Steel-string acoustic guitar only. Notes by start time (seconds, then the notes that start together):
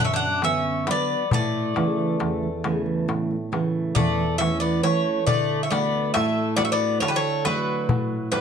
Already playing: D3 F#3 B3
0.00 F#2
0.42 D3 F#3 B3
0.87 F#3 B3 D4
1.32 A2
1.76 C#3 E3 A3
2.20 E2
2.64 C#3 E3 A3
3.08 A2
3.52 C#3 E3 A3
3.96 E2
4.41 E3 A3 C#4
4.83 E3 A3 C#4
5.27 D3
5.71 A3 D4 F#4
6.16 A2
6.58 A3 D4 F#4
7.02 D3
7.45 A3 D4 F#4
7.89 A2
8.32 A3 D4 F#4